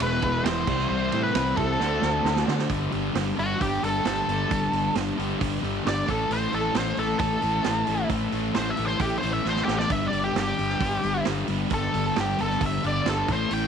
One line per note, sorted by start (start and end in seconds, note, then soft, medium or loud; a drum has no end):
0.00 0.19 E1 medium
0.00 0.43 E2 medium
0.00 0.65 E2 medium
0.00 0.44 B2 medium
0.00 0.65 B2 medium
0.00 0.43 E3 medium
0.00 0.65 E3 medium
0.00 0.66 G#3 loud
0.00 0.65 B3 medium
0.00 0.67 B3 medium
0.00 0.18 E4 medium
0.00 0.65 E4 medium
0.00 0.67 E4 loud
0.00 0.18 G#4 medium
0.00 0.65 G#4 medium
0.00 0.18 B4 medium
0.00 0.43 B4 medium
0.00 0.65 E5 medium
0.00 ride loud
0.22 0.41 E1 loud
0.22 0.41 E4 medium
0.22 0.41 G#4 medium
0.22 0.41 B4 medium
0.22 kick medium
0.22 ride medium
0.44 0.64 E1 medium
0.44 0.66 E2 medium
0.44 0.66 B2 medium
0.44 0.67 E3 medium
0.44 0.62 E4 medium
0.44 0.63 G#4 medium
0.44 0.63 B4 medium
0.44 0.88 C5 medium
0.44 snare loud
0.44 ride loud
0.66 0.86 C2 medium
0.66 1.78 C3 medium
0.66 1.78 E3 medium
0.66 1.79 G3 medium
0.66 1.79 C4 medium
0.66 1.78 C4 medium
0.66 1.04 E4 medium
0.66 1.79 E4 medium
0.66 1.79 E4 loud
0.66 1.04 G4 medium
0.66 1.79 G4 medium
0.66 1.04 C5 medium
0.66 1.79 E5 medium
0.66 kick loud
0.66 crash medium
0.79 snare soft
0.89 1.09 C2 loud
0.89 1.21 C5 medium
1.12 1.31 A2 medium
1.12 1.30 E4 medium
1.12 1.31 G4 medium
1.12 1.31 C5 medium
1.12 ride medium
1.23 1.55 B4 medium
1.34 1.53 C2 medium
1.34 1.78 C3 medium
1.34 1.79 G3 medium
1.34 1.80 C4 medium
1.34 1.53 E4 medium
1.34 1.53 G4 medium
1.34 1.53 C5 medium
1.34 snare loud
1.34 ride loud
1.56 1.76 C2 medium
1.56 1.76 E4 medium
1.56 1.76 G4 medium
1.56 2.43 A4 medium
1.56 1.76 C5 loud
1.56 kick medium
1.56 ride medium
1.78 1.99 D2 medium
1.78 2.68 D3 medium
1.78 2.69 A3 loud
1.78 2.68 C4 medium
1.78 2.69 D4 loud
1.78 1.98 D4 medium
1.78 2.68 F#4 medium
1.78 1.98 F#4 medium
1.78 2.69 F#4 medium
1.78 2.68 A4 medium
1.78 1.98 C5 medium
1.78 2.68 D5 medium
1.78 snare medium
2.02 2.21 D2 medium
2.02 2.21 D4 medium
2.02 2.21 F#4 medium
2.02 2.21 C5 medium
2.02 snare medium
2.24 2.43 D2 medium
2.24 2.43 D4 medium
2.24 2.43 F#4 medium
2.24 2.43 C5 medium
2.24 snare medium
2.36 snare medium
2.45 2.66 D3 medium
2.45 2.68 D3 medium
2.45 2.68 A3 medium
2.45 2.67 D4 medium
2.45 2.66 D4 loud
2.45 2.66 F#4 loud
2.45 2.66 C5 loud
2.45 snare loud
2.59 snare medium
2.69 2.86 G1 medium
2.69 2.91 G2 medium
2.69 2.91 D3 medium
2.69 2.92 G3 medium
2.69 2.92 B3 medium
2.69 2.93 D4 medium
2.69 2.93 G4 medium
2.69 kick loud
2.69 open hi-hat medium
2.92 3.09 G1 medium
2.92 3.14 G2 medium
2.92 3.14 D3 medium
2.92 3.15 G3 medium
2.92 3.15 B3 medium
2.92 3.15 D4 medium
2.92 3.16 G4 medium
2.92 open hi-hat soft
3.15 3.31 G1 medium
3.15 3.36 G2 medium
3.15 3.36 D3 medium
3.15 3.37 G3 medium
3.15 3.37 B3 medium
3.15 3.37 D4 medium
3.15 3.38 G4 medium
3.15 snare loud
3.15 open hi-hat medium
3.37 3.54 G1 medium
3.37 3.59 G2 medium
3.37 3.59 D3 medium
3.37 3.60 G3 medium
3.37 3.60 B3 medium
3.37 3.61 D4 medium
3.37 3.60 F#4 medium
3.37 3.61 G4 medium
3.37 open hi-hat soft
3.60 3.77 G1 medium
3.60 3.82 G2 medium
3.60 3.82 D3 medium
3.60 3.82 G3 medium
3.60 3.83 B3 medium
3.60 3.83 D4 medium
3.60 3.83 G4 medium
3.60 3.84 G4 medium
3.60 kick loud
3.60 open hi-hat medium
3.83 3.99 G1 medium
3.83 4.03 G2 medium
3.83 4.04 D3 medium
3.83 4.04 G3 medium
3.83 4.05 B3 medium
3.83 4.06 D4 medium
3.83 4.06 G4 medium
3.83 4.05 A4 medium
3.83 open hi-hat medium
4.05 4.21 G1 medium
4.05 4.26 G2 medium
4.05 4.27 D3 medium
4.05 4.28 G3 medium
4.05 4.28 B3 medium
4.05 4.28 D4 medium
4.05 4.29 G4 medium
4.05 4.94 A4 medium
4.05 snare loud
4.05 open hi-hat medium
4.28 4.44 G1 medium
4.28 4.49 G2 medium
4.28 4.49 D3 medium
4.28 4.49 G3 medium
4.28 4.50 B3 medium
4.28 4.50 D4 medium
4.28 4.50 G4 medium
4.28 open hi-hat medium
4.50 4.67 G1 medium
4.50 4.72 G2 medium
4.50 4.72 D3 medium
4.50 4.73 G3 medium
4.50 4.73 B3 medium
4.50 4.73 D4 loud
4.50 4.74 G4 medium
4.50 kick loud
4.50 open hi-hat medium
4.72 4.88 G1 medium
4.72 4.93 G2 medium
4.72 4.94 D3 medium
4.72 4.94 G3 medium
4.72 4.94 B3 medium
4.72 4.95 D4 medium
4.72 4.95 G4 medium
4.72 open hi-hat medium
4.94 5.11 G1 medium
4.94 5.16 G2 medium
4.94 5.16 D3 medium
4.94 5.17 G3 medium
4.94 5.18 B3 medium
4.94 5.18 D4 medium
4.94 5.18 G4 medium
4.94 snare loud
4.94 open hi-hat medium
5.17 5.34 G1 medium
5.17 5.38 G2 medium
5.17 5.38 D3 medium
5.17 5.39 G3 medium
5.17 5.39 B3 medium
5.17 5.40 D4 medium
5.17 5.40 G4 medium
5.17 open hi-hat medium
5.39 5.57 G1 medium
5.39 5.61 G2 medium
5.39 5.61 D3 medium
5.39 5.62 G3 medium
5.39 5.62 B3 medium
5.39 5.63 D4 loud
5.39 5.63 G4 loud
5.39 kick loud
5.39 open hi-hat medium
5.62 5.79 G1 medium
5.62 5.84 G2 medium
5.62 5.85 D3 medium
5.62 5.85 G3 medium
5.62 5.86 B3 medium
5.62 5.87 D4 medium
5.62 5.87 G4 medium
5.62 open hi-hat soft
5.86 6.02 G1 medium
5.86 6.07 G2 medium
5.86 6.07 D3 medium
5.86 6.07 G3 medium
5.86 6.07 B3 medium
5.86 6.08 D4 medium
5.86 6.08 G4 medium
5.86 6.08 D5 medium
5.86 snare loud
5.86 open hi-hat medium
6.08 6.24 A1 medium
6.08 6.31 A2 medium
6.08 6.31 E3 medium
6.08 6.32 A3 medium
6.08 6.32 C#4 medium
6.08 6.33 A4 medium
6.08 6.31 A4 medium
6.08 kick medium
6.08 open hi-hat soft
6.30 6.46 A1 medium
6.30 6.52 A2 medium
6.30 6.53 E3 medium
6.30 6.53 A3 medium
6.30 6.54 C#4 medium
6.30 6.54 A4 medium
6.30 6.53 C5 loud
6.30 open hi-hat medium
6.53 6.69 A1 medium
6.53 6.76 A2 medium
6.53 6.76 E3 medium
6.53 6.76 A3 medium
6.53 6.77 C#4 medium
6.53 6.77 A4 medium
6.53 6.76 A4 medium
6.53 open hi-hat soft
6.75 6.91 A1 medium
6.75 6.97 A2 medium
6.75 6.98 E3 medium
6.75 6.99 A3 medium
6.75 6.99 C#4 medium
6.75 6.99 A4 medium
6.75 6.98 C5 medium
6.75 snare loud
6.75 open hi-hat medium
6.97 7.14 A1 medium
6.97 7.19 A2 medium
6.97 7.20 E3 medium
6.97 7.20 A3 medium
6.97 7.20 C#4 medium
6.97 7.18 A4 medium
6.97 7.21 A4 medium
6.97 open hi-hat soft
7.19 7.36 A1 medium
7.19 7.42 A2 loud
7.19 7.43 E3 medium
7.19 7.44 A3 loud
7.19 7.43 C#4 loud
7.19 8.07 A4 medium
7.19 7.44 A4 loud
7.19 kick loud
7.19 open hi-hat medium
7.42 7.59 A1 medium
7.42 7.65 A2 medium
7.42 7.65 E3 medium
7.42 7.66 A3 medium
7.42 7.65 C#4 medium
7.42 7.67 A4 medium
7.42 open hi-hat medium
7.64 7.81 A1 medium
7.64 7.86 A2 medium
7.64 7.86 E3 medium
7.64 7.88 A3 medium
7.64 7.87 C#4 medium
7.64 7.88 A4 medium
7.64 snare loud
7.64 open hi-hat medium
7.87 8.04 A1 medium
7.87 8.08 A2 medium
7.87 8.08 E3 medium
7.87 8.09 A3 medium
7.87 8.09 C#4 medium
7.87 8.10 A4 medium
7.87 open hi-hat medium
8.09 8.26 A1 medium
8.09 8.30 A2 medium
8.09 8.31 E3 medium
8.09 8.32 A3 medium
8.09 8.32 C#4 medium
8.09 8.33 A4 medium
8.09 kick loud
8.09 open hi-hat medium
8.32 8.49 A1 medium
8.32 8.54 A2 medium
8.32 8.54 E3 medium
8.32 8.55 A3 medium
8.32 8.55 C#4 medium
8.32 8.56 A4 medium
8.32 open hi-hat medium
8.54 8.72 A1 medium
8.54 8.76 A2 medium
8.54 8.77 E3 medium
8.54 8.78 A3 medium
8.54 8.77 C#4 medium
8.54 8.79 A4 medium
8.54 8.70 C5 medium
8.54 snare loud
8.54 open hi-hat medium
8.70 8.85 E5 medium
8.77 8.94 A1 medium
8.77 8.97 A2 medium
8.77 8.98 E3 medium
8.77 8.99 A3 medium
8.77 8.99 C#4 medium
8.77 9.00 A4 medium
8.77 open hi-hat medium
8.85 9.00 C5 medium
8.85 snare soft
8.98 9.16 A1 medium
8.98 9.20 A2 medium
8.98 9.20 E3 medium
8.98 9.22 A3 loud
8.98 9.22 C#4 medium
8.98 9.15 G4 medium
8.98 9.23 A4 medium
8.98 kick loud
8.98 open hi-hat medium
9.18 9.43 A2 medium
9.18 9.43 E3 medium
9.18 9.31 C5 medium
9.22 9.39 A1 medium
9.22 9.45 A3 medium
9.22 9.44 C#4 medium
9.22 9.45 A4 medium
9.22 open hi-hat soft
9.33 9.46 E5 medium
9.44 9.62 A1 medium
9.44 9.66 A2 medium
9.44 9.66 E3 medium
9.44 9.68 A3 medium
9.44 9.67 C#4 medium
9.44 9.68 A4 medium
9.44 snare medium
9.49 9.62 C5 medium
9.56 snare medium
9.64 9.84 A1 medium
9.64 9.89 A2 medium
9.64 9.89 E3 medium
9.64 9.90 A3 medium
9.64 9.77 G4 medium
9.64 9.91 A4 medium
9.64 snare medium
9.69 9.89 C#4 medium
9.79 9.92 D5 medium
9.79 snare medium
9.89 10.06 G1 medium
9.89 10.10 G2 medium
9.89 10.10 D3 medium
9.89 10.11 G3 medium
9.89 10.12 B3 medium
9.89 10.12 D4 medium
9.89 10.12 G4 medium
9.89 10.06 E5 medium
9.89 kick loud
9.89 open hi-hat medium
10.08 10.34 G2 medium
10.08 10.33 D3 medium
10.08 10.35 G3 medium
10.08 10.21 D5 medium
10.12 10.29 G1 medium
10.12 10.35 B3 medium
10.12 10.36 D4 medium
10.12 10.35 G4 medium
10.12 open hi-hat medium
10.24 10.37 G4 medium
10.34 10.52 G1 medium
10.34 10.55 G2 medium
10.34 10.56 D3 medium
10.34 10.57 G3 medium
10.34 10.57 B3 medium
10.34 10.58 D4 medium
10.34 10.58 G4 medium
10.34 snare loud
10.34 open hi-hat medium
10.40 11.25 G4 medium
10.57 10.75 G1 medium
10.57 10.79 G2 medium
10.57 10.79 D3 medium
10.57 10.80 G3 medium
10.57 10.80 B3 medium
10.57 10.81 D4 medium
10.57 10.81 G4 medium
10.57 open hi-hat soft
10.69 snare soft
10.80 10.97 G1 medium
10.80 11.02 G2 medium
10.80 11.03 D3 medium
10.80 11.03 G3 medium
10.80 11.04 B3 medium
10.80 11.04 D4 medium
10.80 11.04 G4 medium
10.80 kick loud
10.80 open hi-hat medium
11.03 11.20 G1 medium
11.03 11.25 G2 medium
11.03 11.25 D3 medium
11.03 11.26 G3 medium
11.03 11.26 B3 medium
11.03 11.26 D4 medium
11.03 11.27 G4 medium
11.03 open hi-hat medium
11.25 11.43 G1 medium
11.25 11.47 G2 medium
11.25 11.47 D3 medium
11.25 11.48 G3 medium
11.25 11.49 B3 medium
11.25 11.49 D4 medium
11.25 11.49 G4 medium
11.25 snare loud
11.25 open hi-hat medium
11.47 11.64 G1 medium
11.47 11.68 G2 medium
11.47 11.69 D3 medium
11.47 11.70 G3 medium
11.47 11.70 B3 medium
11.47 11.70 D4 medium
11.47 11.70 G4 medium
11.47 open hi-hat medium
11.69 11.87 G1 medium
11.69 11.91 G2 medium
11.69 11.92 D3 medium
11.69 11.92 G3 medium
11.69 11.93 B3 medium
11.69 11.93 D4 medium
11.69 11.93 G4 loud
11.69 kick loud
11.69 open hi-hat medium
11.74 12.16 A4 loud
11.92 12.10 G1 medium
11.92 12.15 G2 medium
11.92 12.15 D3 medium
11.92 12.15 G3 medium
11.92 12.16 B3 medium
11.92 12.16 D4 medium
11.92 12.16 G4 medium
11.92 open hi-hat medium
12.16 12.33 G1 medium
12.16 12.36 G2 medium
12.16 12.36 D3 medium
12.16 12.37 G3 medium
12.16 12.37 B3 medium
12.16 12.38 D4 medium
12.16 12.39 G4 medium
12.16 snare loud
12.16 open hi-hat medium
12.20 12.40 G4 medium
12.38 12.55 G1 medium
12.38 12.60 G2 medium
12.38 12.61 D3 medium
12.38 12.61 G3 medium
12.38 12.61 B3 medium
12.38 12.62 D4 medium
12.38 12.62 G4 medium
12.38 12.61 A4 medium
12.38 open hi-hat medium
12.50 snare soft
12.61 12.77 G1 medium
12.61 12.83 G2 medium
12.61 12.84 D3 medium
12.61 12.84 G3 medium
12.61 12.84 B3 loud
12.61 12.85 D4 loud
12.61 12.85 G4 loud
12.61 kick loud
12.61 open hi-hat medium
12.66 12.85 E5 medium
12.84 13.00 G1 medium
12.84 13.04 G2 medium
12.84 13.05 D3 medium
12.84 13.05 G3 medium
12.84 13.06 B3 medium
12.84 13.05 D4 medium
12.84 13.06 G4 loud
12.84 13.07 D5 medium
12.84 open hi-hat soft
13.06 13.22 G1 medium
13.06 13.27 G2 medium
13.06 13.27 D3 medium
13.06 13.27 G3 medium
13.06 13.27 B3 medium
13.06 13.27 D4 medium
13.06 13.28 G4 medium
13.06 13.29 A4 medium
13.06 snare loud
13.06 open hi-hat medium
13.28 13.44 A1 medium
13.28 13.50 A2 medium
13.28 13.50 E3 medium
13.28 13.51 A3 medium
13.28 13.52 C#4 medium
13.28 13.52 A4 loud
13.28 13.52 C5 medium
13.28 kick loud
13.28 open hi-hat medium
13.50 13.67 A1 medium
13.50 13.67 A2 medium
13.50 13.67 E3 loud
13.50 13.67 A3 loud
13.50 13.67 C#4 loud
13.50 13.67 A4 loud
13.50 13.67 G5 medium
13.50 open hi-hat medium